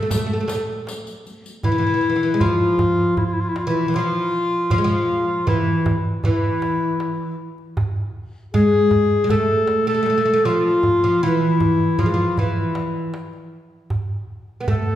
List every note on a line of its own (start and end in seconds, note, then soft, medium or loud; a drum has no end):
0.00 0.09 A3 medium
0.00 0.89 A4 medium
0.10 0.16 A3 medium
0.10 riq soft
0.10 darbuka dum medium
0.17 0.25 A3 medium
0.26 0.32 A3 medium
0.33 0.39 A3 medium
0.41 0.46 A3 soft
0.48 0.54 A3 medium
0.48 riq soft
0.48 darbuka tek medium
0.55 0.62 A3 medium
0.87 riq soft
0.87 darbuka tek medium
1.07 riq soft
1.07 darbuka ka soft
1.25 riq soft
1.25 darbuka ka soft
1.46 riq soft
1.63 1.70 E3 medium
1.63 2.43 E4 medium
1.63 darbuka dum medium
1.72 1.77 E3 soft
1.78 1.85 E3 medium
1.83 1.93 E3 soft
1.83 darbuka ka soft
1.94 2.00 E3 soft
2.01 2.08 E3 soft
2.09 2.15 E3 soft
2.16 2.22 E3 soft
2.23 2.31 E3 medium
2.34 2.41 G#3 medium
2.40 3.13 F3 medium
2.40 3.16 F4 medium
2.40 darbuka dum medium
2.60 darbuka ka soft
2.79 darbuka dum medium
3.17 3.26 E4 medium
3.17 darbuka dum medium
3.25 3.35 F4 medium
3.33 3.42 E4 medium
3.41 3.50 F4 medium
3.49 3.58 E4 medium
3.56 3.68 F4 medium
3.56 darbuka tek medium
3.67 3.87 E3 medium
3.67 3.97 E4 medium
3.88 3.94 E3 medium
3.94 4.70 F3 medium
3.94 4.71 F4 loud
3.94 darbuka tek medium
4.51 darbuka ka soft
4.70 4.78 F3 medium
4.70 5.44 F4 medium
4.70 darbuka dum medium
4.78 4.85 G#3 medium
4.84 5.46 F3 medium
4.90 darbuka ka soft
5.47 5.93 E3 medium
5.47 5.94 E4 medium
5.47 darbuka dum medium
5.66 darbuka ka soft
5.86 darbuka dum medium
6.24 7.35 E3 medium
6.24 7.36 E4 medium
6.24 darbuka dum medium
6.62 darbuka tek medium
7.00 darbuka tek medium
7.58 darbuka ka soft
7.77 darbuka dum medium
7.96 darbuka ka soft
8.54 9.23 G#3 medium
8.54 9.26 G#4 loud
8.54 darbuka dum medium
8.73 darbuka ka soft
8.91 darbuka dum medium
9.24 9.30 G#3 medium
9.29 9.86 A3 medium
9.29 9.84 A4 medium
9.29 darbuka dum medium
9.67 darbuka tek medium
9.87 9.93 A3 medium
9.87 10.47 A4 medium
9.95 10.01 A3 medium
10.03 10.08 A3 medium
10.03 darbuka tek medium
10.10 10.16 A3 medium
10.18 10.24 A3 medium
10.25 10.32 A3 medium
10.33 10.41 A3 medium
10.45 11.03 F3 medium
10.45 11.24 F4 medium
10.64 darbuka ka soft
10.83 darbuka dum medium
11.03 11.23 F3 medium
11.03 darbuka ka soft
11.22 11.95 E3 medium
11.22 12.02 E4 medium
11.22 darbuka ka soft
11.61 darbuka dum medium
11.80 darbuka ka soft
11.99 12.06 F3 medium
11.99 12.40 F4 medium
11.99 darbuka dum medium
12.06 12.13 G#3 medium
12.14 12.38 F3 medium
12.38 13.11 E3 medium
12.38 13.14 E4 medium
12.38 darbuka dum medium
12.75 darbuka tek medium
13.14 darbuka tek medium
13.33 darbuka ka soft
13.90 darbuka dum medium
14.09 darbuka ka soft
14.61 14.67 B3 soft
14.68 14.95 A3 medium
14.68 14.95 A4 medium
14.68 darbuka dum medium
14.87 darbuka ka soft